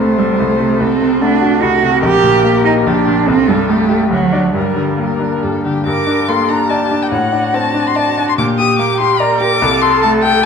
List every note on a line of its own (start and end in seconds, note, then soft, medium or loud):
0.00 0.38 C2 soft
0.00 0.11 C3 soft
0.00 0.20 A3 medium
0.00 0.31 A3 soft
0.00 0.82 C5 medium
0.18 0.41 G3 medium
0.18 0.52 A4 soft
0.39 0.79 C2 soft
0.39 0.83 A3 medium
0.60 0.81 C3 soft
0.80 1.61 C2 medium
0.80 1.23 C4 medium
0.80 1.21 A4 medium
1.02 1.34 C3 soft
1.21 1.55 A3 soft
1.21 1.64 D4 medium
1.21 1.62 F#4 medium
1.42 1.75 F#4 soft
1.62 2.03 C2 medium
1.62 2.03 F#4 medium
1.62 2.03 A4 medium
1.83 2.04 C3 soft
2.03 2.85 A#1 medium
2.03 2.64 G4 medium
2.03 2.89 A#4 medium
2.24 2.57 A#2 soft
2.45 2.78 A#3 soft
2.65 2.73 D#4 medium
2.65 2.99 G4 soft
2.86 3.27 A#1 medium
2.86 3.28 D4 medium
2.86 3.28 G4 medium
3.07 3.28 A#2 soft
3.27 4.09 C2 medium
3.27 3.51 C4 medium
3.27 3.71 A4 medium
3.48 3.82 G2 soft
3.48 3.71 G3 medium
3.68 4.03 A3 soft
3.68 4.11 A3 medium
3.68 4.11 G4 medium
3.89 4.11 G4 soft
4.11 4.53 D2 soft
4.11 4.54 F#3 medium
4.11 4.54 F#4 soft
4.33 4.53 D4 soft
4.33 4.53 D5 soft
4.54 5.41 G2 soft
4.54 5.41 G3 medium
4.54 4.94 A#4 soft
4.76 5.12 D3 soft
4.98 5.34 A#3 soft
4.98 5.44 A#4 soft
5.20 5.55 D4 soft
5.43 5.85 G2 soft
5.43 5.64 A4 soft
5.65 5.87 D3 soft
5.65 5.86 G4 soft
5.86 7.08 G2 medium
5.86 6.30 A#4 medium
5.86 6.30 D6 medium
6.07 6.41 D4 soft
6.28 6.62 A#3 soft
6.28 6.69 A4 medium
6.28 6.51 C6 medium
6.49 6.83 D4 soft
6.49 6.71 A#5 medium
6.69 7.11 G4 soft
6.69 7.04 D5 soft
6.69 7.04 A5 medium
6.91 7.12 D4 soft
7.03 7.11 G5 medium
7.11 8.34 A2 medium
7.11 8.35 F#4 medium
7.11 7.56 F#5 medium
7.33 7.66 D4 soft
7.54 7.87 C4 soft
7.54 7.89 A5 medium
7.74 8.08 D4 soft
7.87 7.97 C6 medium
7.95 8.30 D5 soft
7.95 8.27 A5 medium
8.18 8.39 D4 soft
8.29 8.33 C6 medium
8.37 9.59 A#2 medium
8.37 9.19 G4 medium
8.37 8.46 D6 medium
8.59 8.93 G4 soft
8.59 8.78 D#6 medium
8.79 9.13 A#3 soft
8.79 9.00 D6 medium
9.00 9.33 G4 soft
9.00 9.21 C6 medium
9.20 9.65 A#4 medium
9.20 9.54 D5 medium
9.20 9.40 A#5 medium
9.40 9.62 G4 soft
9.40 9.83 D6 medium
9.62 10.46 C2 medium
9.62 10.44 A4 medium
9.82 10.16 A4 medium
9.82 10.02 C6 medium
10.03 10.37 A3 medium
10.03 10.11 A5 medium
10.23 10.46 A4 medium
10.23 10.44 G5 medium